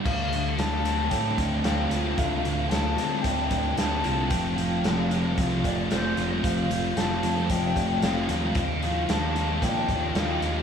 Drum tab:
CC |x-------|--------|--------|--------|
HH |-xxxxxxx|xxxxxxxx|xxxxxxxx|xxxxxxxx|
SD |--o---o-|--o---o-|--o---o-|--o---o-|
BD |o---oo--|o---oo--|o---oo--|o---oo--|

CC |--------|
HH |xxxxxxxx|
SD |--o---o-|
BD |o---oo--|